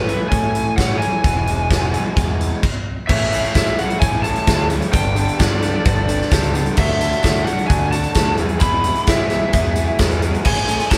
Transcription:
Already playing: A2 A3 C#4 E4 B4 C#5
0.07 A2 E3 A3 C#4 E4, closed hi-hat
0.28 A2 A3 G#5, kick, closed hi-hat
0.55 E3, closed hi-hat
0.75 A2 E3 A3 C#4 E4 F#5, kick, snare, closed hi-hat
0.99 E3 G#5, closed hi-hat
1.20 E2 B2 E3 G#3 B3 B4
1.24 E1 B3 E4, kick, closed hi-hat
1.47 G#3, closed hi-hat
1.71 B3, kick, snare, closed hi-hat
1.92 E2 B2 E3 G#3 B3 E4, closed hi-hat
2.16 E2 G#3, kick, closed hi-hat
2.40 E3, closed hi-hat
2.63 kick, crash
3.07 A1 A2 E3 G#3 A3 C#4 E4 A4 E5, kick, crash, tambourine
3.31 A2 E3 G#3 A3 C#4 E4, closed hi-hat, tambourine
3.44 closed hi-hat
3.53 A1 A2 E3 G#3 A3 C#4 E4 E5, kick, snare, closed hi-hat, tambourine
3.66 closed hi-hat
3.79 A2 E3 G#3 A3 C#4 E4 F#5, closed hi-hat
3.90 closed hi-hat
4.00 A1 A2 E3 G#3 A3 C#4 G#5, kick, closed hi-hat
4.04 E4
4.13 tambourine
4.23 A2 E3 G#3 A3 C#4 E4 A5, closed hi-hat, tambourine
4.35 closed hi-hat, tambourine
4.47 D2 A2 E3 G#3 A3 C#4 E4, kick, snare, closed hi-hat, tambourine
4.70 A2 E3 G#3 A3 C#4 E4, closed hi-hat, tambourine
4.82 closed hi-hat
4.91 G1 G2 D3 G3 B3 D4 A4 B4 G5, kick, closed hi-hat, tambourine
5.14 G2 D3 G3 B3 D4 A4, closed hi-hat, tambourine
5.28 closed hi-hat
5.37 G2 D3 G3 B3 D4 A4 D5, kick, snare, closed hi-hat, tambourine
5.60 G2 D3 G3 B3 D4 A4, snare, closed hi-hat
5.84 G1 G2 D3 G3 B3 D4 A4, kick, closed hi-hat
5.97 tambourine
6.06 G2 D3 G3 B3 D4 A4, closed hi-hat, tambourine
6.20 snare, tambourine
6.30 C#2 G2 D3 G3 B3 D4 A4, kick, snare, closed hi-hat, tambourine
6.43 closed hi-hat
6.53 G2 D3 G3 B3 D4 A4, closed hi-hat, tambourine
6.66 closed hi-hat
6.76 D2 D3 F#3 A3 D4 F#4 E5 F#5, kick, tambourine, crash
6.98 D3 F#3 A3 D4 F#4, closed hi-hat, tambourine
7.13 closed hi-hat
7.22 D2 D3 F#3 A3 D4 F#4 E5, kick, snare, closed hi-hat, tambourine
7.36 closed hi-hat
7.43 D3 F#3 A3 D4 F#4 F#5, closed hi-hat
7.59 closed hi-hat
7.67 D2 D3 F#3 A3 D4 F#4 G#5, kick, closed hi-hat
7.81 tambourine
7.91 D3 F#3 A3 D4 F#4 A5, closed hi-hat, tambourine
8.03 closed hi-hat, tambourine
8.14 D2 D3 F#3 A3 D4 F#4, kick, snare, closed hi-hat, tambourine
8.37 E2 B2 E3 G#3 B3 E4 G#4 B4 E5, closed hi-hat
8.49 closed hi-hat
8.59 E2 B2 E3 G#3 B3 G#4 B5, kick, closed hi-hat, tambourine
8.63 E4
8.83 E2 B2 E3 G#3 B3 G#4, closed hi-hat, tambourine
8.87 E4
8.95 closed hi-hat
9.05 E2 B2 E3 G#3 B3 G#4 E5, kick, snare, closed hi-hat, tambourine
9.10 E4
9.19 tambourine
9.29 E2 B2 E3 G#3 B3 E4 G#4, snare, closed hi-hat, tambourine
9.51 E2 B2 E3 G#3 B3 E4 G#4, kick, closed hi-hat, tambourine
9.65 tambourine
9.73 E2 B2 E3 G#3 B3 E4 G#4, closed hi-hat, tambourine
9.88 tambourine
9.98 E2 B2 E3 G#3 B3 E4 G#4, kick, snare, closed hi-hat, tambourine
10.11 closed hi-hat
10.20 E2 B2 E3 G#3 B3 E4 G#4, closed hi-hat, tambourine
10.34 closed hi-hat
10.43 A1 A2 E3 A3 C#4 E4 G#4 A4 C#5 G#5, kick, tambourine, crash
10.67 A2 E3 A3 C#4 E4 G#4, closed hi-hat, tambourine
10.80 closed hi-hat
10.90 A1 A2 E3 A3 C#4 E4 G#4 A5, kick, snare, closed hi-hat, tambourine

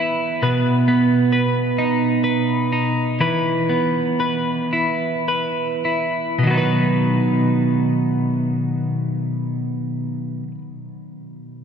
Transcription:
Already playing: E3 B3 B4
0.00 E4
0.43 B2 B4
0.88 B3
1.32 B4
1.79 D#4
2.24 B4
2.72 D#4
3.20 E3 B4
3.69 B3
4.20 B4
4.73 E4
5.28 B4
5.85 E4
6.39 B2
6.43 D#3 F#3
6.51 B3 D#4
6.58 B4

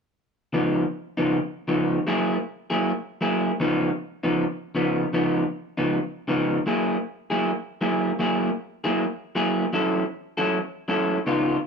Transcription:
0.53 C#3 F3 B3 D#4
1.17 C#3 F3 B3 D#4
1.68 C#3 F3 B3 D#4
2.07 F#3 A#3 E4 G#4
2.70 F#3 A#3 E4 G#4
3.21 F#3 A#3 E4 G#4
3.60 C#3 F3 B3 D#4
4.23 C#3 F3 B3 D#4
4.75 C#3 F3 B3 D#4
5.13 C#3 F3 B3 D#4
5.77 C#3 F3 B3 D#4
6.28 C#3 F3 B3 D#4
6.66 F#3 A#3 E4 G#4
7.30 F#3 A#3 E4 G#4
7.81 F#3 A#3 E4 G#4
8.19 F#3 A#3 E4 G#4
8.84 F#3 A#3 E4 G#4
9.35 F#3 A#3 E4 G#4
9.73 F#3 C#4 E4 A4
10.37 F#3 C#4 E4 A4
10.88 F#3 C#4 E4 A4
11.26 C#3 B3 D#4 F4

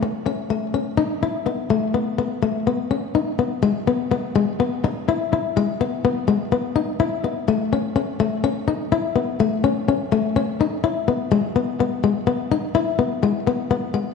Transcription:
0.03 muted steel-string acoustic guitar stroke
0.26 C#4
0.50 A3
0.74 C#4
0.98 D#4
1.23 E4
1.46 B3
1.70 A3
1.94 B3
2.18 B3
2.43 A3
2.67 B3
2.91 C#4
3.15 D#4
3.39 B3
3.63 G#3
3.88 B3
4.11 B3
4.36 G#3
4.60 B3
4.84 muted steel-string acoustic guitar stroke
5.09 E4
5.33 E4
5.57 G#3
5.81 B3
6.05 B3
6.28 G#3
6.52 B3
6.76 D#4
7.00 E4
7.24 B3
7.48 A3
7.73 C#4
7.96 C#4
8.20 A3
8.44 C#4
8.68 D#4
8.92 E4
9.16 B3
9.40 A3
9.64 C#4
9.88 C#4
10.12 A3
10.36 C#4
10.61 D#4
10.84 E4
11.08 B3
11.32 G#3
11.56 B3
11.80 B3
12.04 G#3
12.27 B3
12.52 D#4
12.75 E4
12.99 B3
13.23 G#3
13.47 B3
13.71 B3
13.94 G#3

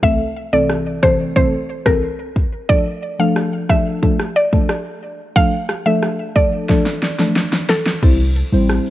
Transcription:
0.02 C2 E3 A3 C4 A4 E5, kick
0.52 C2 E3 A3 C4 A4 D5
0.70 cross-stick
1.03 C2 E3 A3 C4 A4 C5, kick, cross-stick
1.36 C2 E3 A3 C4 A4 C5, kick
1.86 C2 E3 A3 C4 A4 A#4, kick, cross-stick
2.36 kick
2.69 F3 A3 D4 A4 D5, kick
3.19 F3 A3 D4 A4 F5
3.36 cross-stick
3.69 F3 A3 D4 A4 E5, kick, cross-stick
4.02 F3 A3 D4 A4, kick
4.19 cross-stick
4.36 D5
4.53 F3 A3 D4 A4, kick
4.69 cross-stick
5.36 F3 A3 D4 A4 F5, kick
5.69 cross-stick
5.86 F3 A3 D4 A4 E5
6.03 cross-stick
6.36 F3 A3 D4 A4 D5, kick
6.69 F3 A3 D4 A4, kick, snare
6.86 snare
7.03 snare
7.19 F3 A3 D4 A4, snare
7.36 snare
7.53 snare
7.69 A4, snare
7.86 snare
8.02 C2 G3 C4 E4 C5, kick, crash, shaker
8.19 shaker
8.36 closed hi-hat, shaker
8.52 A1 G3 C4 E4 C5, shaker
8.69 cross-stick, shaker
8.86 shaker

